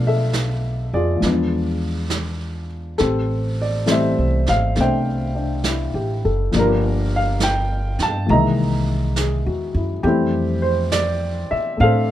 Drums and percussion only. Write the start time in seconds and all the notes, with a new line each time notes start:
0.33 snare, hi-hat pedal
1.22 brush sweep, snare
2.10 snare, hi-hat pedal
2.98 brush sweep, snare
3.87 snare, hi-hat pedal
4.46 snare
4.75 brush sweep, snare
5.64 snare, hi-hat pedal
6.52 brush sweep, snare
7.40 snare, hi-hat pedal
7.99 snare
8.28 brush sweep
9.16 snare, hi-hat pedal
10.04 brush sweep
10.92 snare, hi-hat pedal
11.79 brush sweep